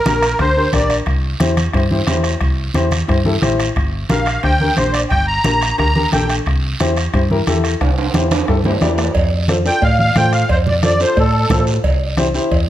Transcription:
Already playing: accordion A#4
0.05 fingered electric bass A#1, upright piano D4 G4 A#4, bombo rim, high conga, high timbale, short guiro
0.22 bombo rim, high timbale, short guiro
0.39 fingered electric bass D2, upright piano D4 G4 A#4, accordion C5, bombo low, bombo rim, high conga, high timbale, long guiro
0.56 upright piano D4 G4 A#4
0.72 fingered electric bass A#1, upright piano D4 G4 A#4, accordion D5, bombo low, bombo rim, high conga, high timbale, short guiro
0.90 bombo rim, high timbale, short guiro
1.06 fingered electric bass C2, bombo low, bombo rim, high conga, high timbale, long guiro
1.40 fingered electric bass E2, upright piano E4 G4 C5, bombo rim, high conga, high timbale, short guiro
1.57 bombo rim, high conga, high timbale, short guiro
1.73 fingered electric bass G2, upright piano E4 G4 C5, bombo low, bombo rim, high conga, high timbale, long guiro
1.91 upright piano E4 G4 C5, high conga
2.07 fingered electric bass E2, upright piano E4 G4 C5, bombo rim, high conga, high timbale, low timbale, short guiro
2.24 bombo rim, high timbale, short guiro
2.41 fingered electric bass C2, bombo low, bombo rim, high conga, high timbale, long guiro
2.74 fingered electric bass E2, upright piano E4 G4 C5, bombo rim, high conga, high timbale, short guiro
2.91 bombo rim, high conga, high timbale, short guiro
3.08 fingered electric bass G2, upright piano E4 G4 C5, bombo low, bombo rim, high conga, high timbale, long guiro
3.25 upright piano E4 G4 A4, high conga
3.42 fingered electric bass A1, upright piano E4 G4 C5, bombo rim, high conga, high timbale, short guiro
3.59 bombo rim, high timbale, short guiro
3.76 fingered electric bass G1, bombo low, bombo rim, high conga, high timbale, long guiro
4.09 fingered electric bass A#1, upright piano D4 G4 A#4, accordion F5, bombo rim, high conga, high timbale, short guiro
4.26 bombo rim, high timbale, short guiro
4.43 fingered electric bass D2, upright piano D4 G4 C5, accordion G5, bombo low, bombo rim, high conga, high timbale, long guiro
4.60 upright piano D4 G4 A#4, high conga
4.76 fingered electric bass A#1, upright piano D4 G4 C5, accordion C5, bombo rim, high conga, high timbale, short guiro
4.93 accordion D5, bombo rim, high timbale, short guiro
5.10 fingered electric bass G1, accordion G5, bombo low, bombo rim, high conga, high timbale, long guiro
5.27 accordion A#5
5.44 fingered electric bass A#1, upright piano D4 G4 A#4, bombo rim, high conga, high timbale, short guiro
5.61 bombo rim, high timbale, short guiro
5.78 fingered electric bass D2, upright piano D4 G4 A#4, accordion A#5, bombo low, bombo rim, high conga, high timbale, long guiro
5.95 upright piano D4 G4 A#4, high conga
6.12 fingered electric bass A#1, upright piano D4 G4 A4, accordion G5, bombo rim, high conga, high timbale, short guiro
6.29 bombo rim, high timbale, short guiro
6.46 fingered electric bass C2, bombo low, bombo rim, high conga, high timbale, long guiro
6.80 fingered electric bass E2, upright piano E4 G4 C5, bombo rim, high conga, high timbale, short guiro
6.97 bombo rim, high timbale, short guiro
7.13 fingered electric bass G2, upright piano E4 G4 C5, bombo low, bombo rim, high conga, high timbale, long guiro
7.31 upright piano E4 G4 A#4, high conga
7.47 fingered electric bass E2, upright piano E4 G4 A4, bombo rim, high conga, high timbale, short guiro
7.64 bombo rim, high timbale, short guiro
7.81 fingered electric bass C2, bombo low, bombo rim, high conga, high timbale, long guiro
7.98 high timbale
8.14 fingered electric bass E2, upright piano E4 G4 C5, bombo rim, high conga, high timbale, short guiro
8.31 bombo rim, high conga, high timbale, short guiro
8.48 fingered electric bass G2, upright piano E4 G4 A4, bombo low, bombo rim, high conga, long guiro
8.64 upright piano E4 G4 C5, high conga, low timbale
8.81 fingered electric bass E2, upright piano E4 G4 D5, bombo rim, high conga, low timbale, short guiro
8.98 bombo rim, low timbale, short guiro
9.15 fingered electric bass F2, bombo low, cowbell, long guiro
9.48 upright piano F4 A4 C5, bombo rim, high conga, short guiro
9.65 upright piano F4 A4 D5, accordion G5, short guiro
9.82 fingered electric bass A2, accordion F5, bombo low, cowbell, long guiro
9.99 accordion F5, high conga
10.16 fingered electric bass A2, upright piano F4 A4 C5, accordion G5, bombo rim, high conga, short guiro
10.33 accordion F5, bombo rim, short guiro
10.49 fingered electric bass F2, accordion C5, bombo low, cowbell, long guiro
10.66 accordion D5, low conga
10.83 upright piano F4 A4 C5, accordion D5, bombo rim, high conga, short guiro
11.00 upright piano F4 A4 C5, accordion C5, short guiro
11.17 fingered electric bass A2, accordion A4, bombo low, cowbell, long guiro
11.50 fingered electric bass A2, upright piano F4 A4 C5, bombo low, bombo rim, high conga, low conga, low timbale, short guiro
11.67 short guiro
11.84 fingered electric bass C2, bombo low, cowbell, long guiro
12.17 upright piano E4 G4 C5, bombo rim, high conga, short guiro
12.34 upright piano E4 G4 C5, short guiro
12.51 fingered electric bass E2, bombo low, cowbell, long guiro

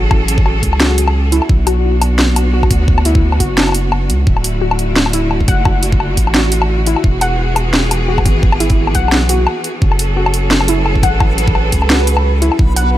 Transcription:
Already playing: sub bass A1, cello section F#3 C#4 G#4 A4, synth pluck F#4
0.11 kick, low woodblock
0.28 closed hi-hat
0.38 kick
0.46 low woodblock
0.63 sub bass C#2, kick, closed hi-hat
0.73 low woodblock
0.80 synth pluck F#4, snare
0.98 closed hi-hat
1.08 low woodblock
1.32 synth pluck E4, closed hi-hat
1.42 low woodblock
1.49 sub bass B1, cello section B3 D4 F#4, kick
1.67 synth pluck F#4, closed hi-hat, low woodblock
2.02 closed hi-hat, low woodblock
2.19 snare
2.36 closed hi-hat, low woodblock
2.54 synth pluck F#4
2.63 kick, low woodblock
2.71 sub bass D2, kick, closed hi-hat
2.88 kick
2.98 low woodblock
3.05 synth pluck E4, closed hi-hat
3.15 kick
3.32 low woodblock
3.40 sub bass F#1, synth pluck F#4, kick, closed hi-hat
3.58 snare, low woodblock
3.61 low woodblock
3.63 low woodblock
3.67 low woodblock
3.69 low woodblock
3.72 closed hi-hat, low woodblock
3.92 low woodblock
4.10 sub bass C#2, closed hi-hat
4.27 sub bass D1, cello section D3 A3 E4 F#4, kick
4.37 low woodblock
4.44 closed hi-hat
4.61 synth pluck F#4
4.71 low woodblock
4.79 closed hi-hat
4.96 snare
5.06 low woodblock
5.13 synth pluck E4, closed hi-hat
5.31 low woodblock
5.41 kick
5.48 sub bass F#1, synth pluck F#5, kick, closed hi-hat
5.65 kick, low woodblock
5.83 closed hi-hat
5.92 kick
6.00 low woodblock
6.17 sub bass A1, kick, closed hi-hat
6.27 low woodblock
6.34 synth pluck F#4, snare
6.52 closed hi-hat
6.62 low woodblock
6.86 synth pluck E4, closed hi-hat
6.96 low woodblock
7.04 sub bass E1, cello section E3 B3 G#4, kick
7.21 synth pluck F#5, closed hi-hat, low woodblock
7.56 closed hi-hat, low woodblock
7.73 snare
7.91 closed hi-hat, low woodblock
8.08 synth pluck F#4
8.18 kick, low woodblock
8.26 sub bass G#1, kick, closed hi-hat
8.43 kick
8.52 low woodblock
8.60 synth pluck E4, closed hi-hat
8.70 kick, closed hi-hat
8.87 low woodblock
8.95 sub bass B1, synth pluck F#5, kick, closed hi-hat
9.08 snare, low woodblock
9.29 synth pluck F#4, closed hi-hat
9.47 low woodblock
9.64 closed hi-hat
9.81 sub bass F#1, cello section F#3 C#4 G#4 A4, synth texture B4, kick
9.92 low woodblock
9.99 closed hi-hat
10.17 synth pluck F#4
10.26 low woodblock
10.34 closed hi-hat
10.51 snare
10.61 low woodblock
10.68 synth pluck E4, closed hi-hat
10.86 low woodblock
10.95 kick
11.03 sub bass A1, synth pluck F#5, kick, closed hi-hat
11.20 kick, low woodblock
11.38 closed hi-hat
11.48 kick
11.55 low woodblock
11.72 sub bass C#2, kick, closed hi-hat
11.82 low woodblock
11.90 synth pluck F#4, snare
12.07 closed hi-hat
12.17 low woodblock
12.42 synth pluck E4, closed hi-hat
12.52 low woodblock
12.59 sub bass B1, cello section B3 D4 F#4, kick
12.76 synth pluck F#5, closed hi-hat

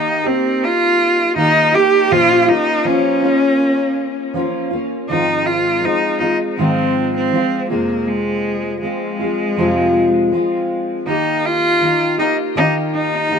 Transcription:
Already playing: steel-string acoustic guitar D#3 A#3 D#4 G4, cello D#4
0.24 steel-string acoustic guitar A#3 D#4 G4, cello C4
0.64 cello F4
1.36 steel-string acoustic guitar D#3 A#3 D#4 G4, cello D#4
1.72 steel-string acoustic guitar A#3 D#4 G4, cello G4
2.11 steel-string acoustic guitar A#2 F3 A#3 C#4 F4, cello F4
2.42 cello F4
2.47 steel-string acoustic guitar A#3 C#4 F4, cello D#4
2.85 steel-string acoustic guitar F3 A#3 C#4 F4, cello C#4
3.22 steel-string acoustic guitar A#3 C#4 F4
4.34 steel-string acoustic guitar F3 A#3 C#4 F4
4.71 steel-string acoustic guitar A#3 C#4 F4
5.09 steel-string acoustic guitar G#2 D#3 F3 G#3 C4 F4, cello D#4
5.46 cello F4
5.82 steel-string acoustic guitar F3 G#3 C4 F4, cello D#4
6.19 steel-string acoustic guitar F3 G#3 C4 F4, cello D#4
6.57 steel-string acoustic guitar G#2 D#3 F3 G#3 C4 F4, cello C4
7.17 cello C4
7.32 steel-string acoustic guitar F3 G#3 C4 F4
7.70 steel-string acoustic guitar F2 C3 F3 G#3 C4 F4, cello A#3
8.07 cello G#3
8.81 steel-string acoustic guitar F3 G#3 C4 F4, cello G#3
9.19 steel-string acoustic guitar F3 G#3 C4 F4
9.57 steel-string acoustic guitar F2 C3 F3 G#3 C4 F4
10.32 steel-string acoustic guitar F3 G#3 C4 F4
11.06 steel-string acoustic guitar D#3 A#3 D#4 G4, cello D#4
11.45 cello F4
11.80 steel-string acoustic guitar D#3 A#3 D#4 G4
12.18 steel-string acoustic guitar A#3 D#4 G4, cello D#4
12.55 steel-string acoustic guitar D#3 A#3 D#4 G4, cello D#4
12.94 cello D#4
13.30 steel-string acoustic guitar D#3 A#3 D#4 G4

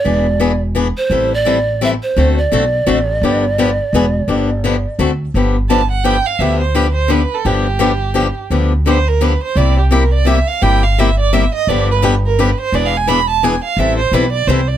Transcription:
Already playing: pan flute C#5
0.05 upright bass E1, steel-string acoustic guitar E3 B3 D4 G#4, pan flute D5
0.40 steel-string acoustic guitar E3 B3 D4 G#4
0.75 steel-string acoustic guitar E3 B3 D4 G#4
0.97 pan flute C5
1.10 upright bass A1, steel-string acoustic guitar E3 G3 C4 E4 A4
1.34 pan flute D5
1.45 steel-string acoustic guitar E3 G3 C4 E4 A4
1.81 steel-string acoustic guitar E3 G3 C4 E4 A4, pan flute E5
2.03 pan flute C5
2.17 upright bass D2, steel-string acoustic guitar D3 A3 C4 F#4 A4
2.38 pan flute D5
2.52 upright bass B1, steel-string acoustic guitar D3 A3 C4 F#4 A4
2.86 upright bass A1, steel-string acoustic guitar D3 A3 C4 F#4 A4
3.21 upright bass G1, steel-string acoustic guitar D3 F3 B3 D4 G4
3.58 steel-string acoustic guitar D3 F3 B3 D4 G4
3.93 upright bass E1, steel-string acoustic guitar E3 B3 D4 G#4
4.28 upright bass G1, steel-string acoustic guitar D3 F3 B3 D4 G4
4.64 steel-string acoustic guitar D3 F3 B3 D4 G4
4.99 upright bass D2, steel-string acoustic guitar D3 A3 C4 F#4 A4
5.34 upright bass G1, steel-string acoustic guitar D3 F3 B3 D4 G4
5.69 steel-string acoustic guitar D3 F3 B3 D4 G4, violin A5
5.91 violin F#5
6.04 steel-string acoustic guitar D3 F3 B3 D4 G4, violin G5
6.26 violin F5
6.39 upright bass D2, steel-string acoustic guitar D3 F3 B3 D4 G4, violin E5
6.60 violin C5
6.75 steel-string acoustic guitar D3 F3 B3 D4 G4, violin B4
6.95 violin C5
7.08 steel-string acoustic guitar D3 F3 B3 D4 G4, violin B4
7.34 violin A4
7.45 upright bass G1, steel-string acoustic guitar D3 F3 B3 D4 G4, violin G4
7.79 steel-string acoustic guitar D3 F3 B3 D4 G4
8.14 steel-string acoustic guitar D3 F3 B3 D4 G4
8.50 upright bass D2, steel-string acoustic guitar D3 F3 B3 D4 G4
8.86 steel-string acoustic guitar D3 F3 B3 D4 G4, violin C5
9.08 violin A#4
9.21 steel-string acoustic guitar D3 F3 B3 D4 G4, violin B4
9.44 violin C5
9.55 upright bass C2, steel-string acoustic guitar C3 G3 A#3 E4 G4, violin D5
9.79 violin G4
9.91 steel-string acoustic guitar C3 G3 A#3 E4 G4, violin A#4
10.14 violin D5
10.25 steel-string acoustic guitar C3 G3 A#3 E4 G4, violin E5
10.47 violin F5
10.62 upright bass G1, steel-string acoustic guitar C3 G3 A#3 E4 G4, violin G5
10.83 violin F5
10.98 steel-string acoustic guitar C3 G3 A#3 E4 G4, violin E5
11.20 violin D5
11.33 steel-string acoustic guitar C3 G3 A#3 E4 G4, violin E5
11.55 violin D#5
11.67 upright bass G1, steel-string acoustic guitar D3 F3 B3 D4 G4, violin D5
11.91 violin B4
12.02 steel-string acoustic guitar D3 F3 B3 D4 G4
12.26 violin A#4
12.39 steel-string acoustic guitar D3 F3 B3 D4 G4, violin B4
12.61 violin C5
12.72 upright bass E1, steel-string acoustic guitar E3 B3 D4 G#4, violin D5
12.86 violin F5
12.97 violin G#5
13.07 steel-string acoustic guitar E3 B3 D4 G#4, violin B5
13.30 violin A5
13.43 steel-string acoustic guitar E3 B3 D4 G#4, violin G#5
13.64 violin F5
13.77 upright bass A1, steel-string acoustic guitar E3 G3 C4 E4 A4, violin E5
13.98 violin C5
14.12 upright bass B1, steel-string acoustic guitar E3 G3 C4 E4 A4, violin B4
14.33 violin D5
14.47 upright bass C2, steel-string acoustic guitar E3 G3 C4 E4 A4, violin C5
14.68 violin D5

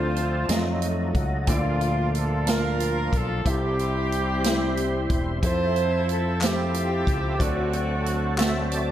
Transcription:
Already playing: fingered electric bass D2, grand piano D3 A3 D4 F4 C5, tonewheel organ F3 C4 D4 A4, horn section A3 C4 F4
0.16 closed hi-hat
0.48 fingered electric bass F2, grand piano F#3 G#3 F4 D#5, tonewheel organ A3 D#4 F4, snare, closed hi-hat
0.55 tonewheel organ F#3, grand piano A3
0.81 grand piano D#5, closed hi-hat
1.14 fingered electric bass C#2, grand piano F#5, kick, closed hi-hat
1.47 fingered electric bass D2, grand piano A#2 D3 F4 A4 D5, tonewheel organ F3 D4 F4, horn section A3 A#3 F4, kick, closed hi-hat
1.81 closed hi-hat
2.15 horn section A4, closed hi-hat
2.46 grand piano A#3 F4 F5 A5, horn section F4, snare, closed hi-hat
2.50 horn section A#4
2.80 closed hi-hat
3.13 fingered electric bass B1, horn section A4, kick, closed hi-hat
3.45 fingered electric bass C2, grand piano C3 C4 E4 G4 E5, tonewheel organ G3 C4 E4 C5, horn section C4 E4 G4, kick, closed hi-hat
3.79 closed hi-hat
4.12 closed hi-hat
4.43 grand piano C4 E4 G4 E5, snare, closed hi-hat
4.77 closed hi-hat
5.10 fingered electric bass E1, kick, closed hi-hat
5.42 fingered electric bass F2, tonewheel organ F3 C4 E4 G#4, grand piano F3 C4 A4 E5, horn section E4 A4 C5, kick, closed hi-hat
5.49 tonewheel organ A4
5.76 closed hi-hat
6.09 horn section A4, closed hi-hat
6.40 grand piano F3 C4 A4 E5, horn section C4 E4 G4, snare, clap, closed hi-hat
6.74 closed hi-hat
7.07 fingered electric bass C#2, kick, closed hi-hat
7.38 fingered electric bass D2, grand piano D3 C4 F#4 A4 D5, tonewheel organ F#3 C4 D4 A4, horn section A3 C4 F#4, kick, closed hi-hat
7.73 closed hi-hat
8.06 closed hi-hat
8.37 grand piano C4 F#4 A4 E5, snare, clap, closed hi-hat
8.71 tonewheel organ D5, closed hi-hat

